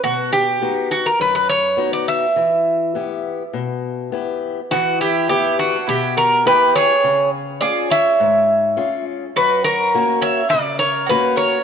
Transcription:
<<
  \new Staff \with { instrumentName = "Bouzouki" } { \time 4/4 \tempo 4 = 103 fis'8 g'4 fis'16 ais'16 b'16 b'16 cis''8. d''16 e''8~ | e''2. r4 | fis'8 g'8 g'8 fis'8 g'8 ais'8 b'8 cis''8~ | cis''8 r8 d''8 e''2 r8 |
b'8 ais'4 e''8 d''8 cis''8 b'8 cis''8 | }
  \new Staff \with { instrumentName = "Mandolin" } { \time 4/4 r1 | r1 | b8 e'8 e'8 d'8 e'8 fis'8 g'8 gis'8~ | gis'8 r8 gis'8 cis''2 r8 |
fis'8 fis'4 cis''8 ais'8 ais'8 fis'8 ais'8 | }
  \new Staff \with { instrumentName = "Steel-string acoustic guitar" } { \time 4/4 b,4 <b dis' fis'>4 fis,4 <b dis' fis'>4 | e4 <b e' g'>4 b,4 <b e' g'>4 | e4 <b e' g'>4 b,4 <b e' g'>4 | cis4 <cis' eis' gis'>4 gis,4 <cis' eis' gis'>4 |
fis,4 <ais cis' fis'>4 cis4 <ais cis' fis'>4 | }
>>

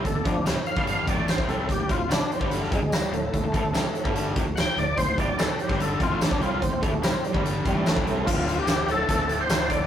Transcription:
<<
  \new Staff \with { instrumentName = "Tonewheel organ" } { \time 4/4 \key d \minor \tempo 4 = 146 a'8 <f d'>8 r8 f''4 d''8 c''8 a'8 | g'8 f'8 d'8 c'8 a8 gis8 g8 a8~ | a2~ a8 r8 <fis'' g''>8 d''8 | c''8 d''8 a'8 g'8 a'8 f'8 d'8 f'8 |
c'8 a8 c'8 g8 r8 g8 a4 | f'8. g'8. a'8. a'8 c''8. d''8 | }
  \new Staff \with { instrumentName = "Overdriven electric guitar" } { \clef bass \time 4/4 \key d \minor <d, a,>16 <d, a,>16 <d, a,>16 <d, a,>16 <c g>16 r8 <g, d g>8. <f, c>16 <a, e a>8 <d, a,>16 <c g c'>8 | <d, a,>16 <d, a,>16 <d, a,>16 <d, a,>16 <c g>16 r8 <g, d g>8. <f, c>16 <d, a,>8 r16 <d, a,>8 | <d, a,>16 <d, a,>16 <d, a,>16 <d, a,>16 <c g>16 r8 <g, d g>8. <f, c>16 <d, a,>8 r16 <d, a,>8 | <d, a,>16 <d, a,>16 <d, a,>16 <d, a,>16 <c g>16 r8 <g, d g>8. <f, c>16 <a, e a>8 <d, a,>16 <c g c'>8 |
<d, a,>16 <d, a,>16 <d, a,>16 <d, a,>16 <c g>16 r8 <g, d g>8. <f, c>16 <a, e a>8 <d, a,>16 <c g c'>8 | <d, a, d>8 <d, a, d>8 <d, a, d>8 <d, a, d>8 <d, a, d>8 <d, a, d>8 <d, a, d>8 <d, a, d>8 | }
  \new Staff \with { instrumentName = "Overdriven electric guitar" } { \clef bass \time 4/4 \key d \minor <d, a,>16 <d, a,>16 <d, a,>16 <d, a,>16 <c g>16 r8 <g, d g>8. <f, c>16 <a, e a>8 <d, a,>16 <c g c'>8 | <d, a,>16 <d, a,>16 <d, a,>16 <d, a,>16 <c g>16 r8 <g, d g>8. <f, c>16 <d, a,>8 r16 <d, a,>8 | <d, a,>16 <d, a,>16 <d, a,>16 <d, a,>16 <c g>16 r8 <g, d g>8. <f, c>16 <d, a,>8 r16 <d, a,>8 | <d, a,>16 <d, a,>16 <d, a,>16 <d, a,>16 <c g>16 r8 <g, d g>8. <f, c>16 <a, e a>8 <d, a,>16 <c g c'>8 |
<d, a,>16 <d, a,>16 <d, a,>16 <d, a,>16 <c g>16 r8 <g, d g>8. <f, c>16 <a, e a>8 <d, a,>16 <c g c'>8 | r1 | }
  \new Staff \with { instrumentName = "Fingered electric bass" } { \clef bass \time 4/4 \key d \minor d,,16 d,,16 d,,16 d,,16 c,16 r8 g,,8. f,,16 a,,8 d,,16 c,8 | d,,16 d,,16 d,,16 d,,16 c,16 r8 g,,8. f,,16 d,,8 r16 d,,8 | d,,16 d,,16 d,,16 d,,16 c,16 r8 g,,8. f,,16 d,,8 r16 d,,8 | d,,16 d,,16 d,,16 d,,16 c,16 r8 g,,8. f,,16 a,,8 d,,16 c,8 |
d,,16 d,,16 d,,16 d,,16 c,16 r8 g,,8. f,,16 a,,8 d,,16 c,8 | d,,4 d,,8 d,,8 d,,4 d,,4 | }
  \new DrumStaff \with { instrumentName = "Drums" } \drummode { \time 4/4 <hh bd>8 <hh bd>8 <hh sn tamb>8 hh16 <bd sn>16 hh8 <hh bd>8 <hh sn tamb>16 bd16 hh8 | <hh bd>8 <hh bd>8 <hh sn tamb>8 hh16 bd16 hh16 sn16 <hh bd>8 <hh sn tamb>8 hh8 | <hh bd>8 <hh bd>8 <hh sn tamb>8 hh16 bd16 hh8 <hh bd>8 <hh sn tamb>8 hh8 | <hh bd>8 <hh bd>8 <hh sn tamb>8 hh16 <bd sn>16 hh8 <hh bd>8 <hh sn tamb>16 bd16 hh8 |
<hh bd>8 <hh bd>8 <hh sn tamb>8 hh16 bd16 hh8 <hh bd>8 <hh sn tamb>16 bd16 hh8 | <cymc bd>8 hh8 <hh sn tamb>8 hh8 <hh bd>8 hh8 <hh sn tamb>8 <hh bd>8 | }
>>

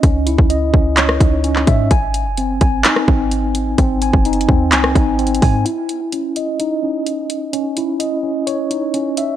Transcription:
<<
  \new Staff \with { instrumentName = "Tine electric piano" } { \time 4/4 \key cis \minor \tempo 4 = 128 <cis' dis' dis''>8 e'8 dis''8 cis'8 cis''8 dis'8 cis'8 e''8 | gis''4 bis8 gis''8 dis'8 bis4. | bis8 gis''8 dis'8 bis8 gis''8 dis'8 bis8 gis''8 | e'4 cis'8 dis''8 dis'8 cis'4. |
cis'8 e'8 dis''8 cis'8 cis''8 dis'8 cis'8 e''8 | }
  \new Staff \with { instrumentName = "808-style bass" } { \clef bass \time 4/4 \key cis \minor cis,8. cis,8. cis,4 cis,4 gis,8 | gis,,8. fis,,8. gis,,8 r8 gis,,4. | gis,,8. fis,,8. dis,8 bis,,8 gis,,4 gis,8 | r1 |
r1 | }
  \new DrumStaff \with { instrumentName = "Drums" } \drummode { \time 4/4 <hh bd>8 hh16 bd16 hh8 bd8 <hc hh>16 ss16 <hh bd>8 hh16 hc16 <hh bd>8 | <hh bd>8 hh8 hh8 <hh bd>8 <hc hh>16 ss16 bd8 hh8 hh8 | <hh bd>8 hh16 bd16 \tuplet 3/2 { hh16 hh16 hh16 bd16 r16 r16 } <hc hh>16 ss16 <hh bd>8 \tuplet 3/2 { hh16 hh16 hh16 <hho bd>16 r16 r16 } | hh8 hh8 hh8 hh8 hh4 hh8 hh8 |
hh8 hh8 hh4 hh8 hh8 hh8 hh8 | }
>>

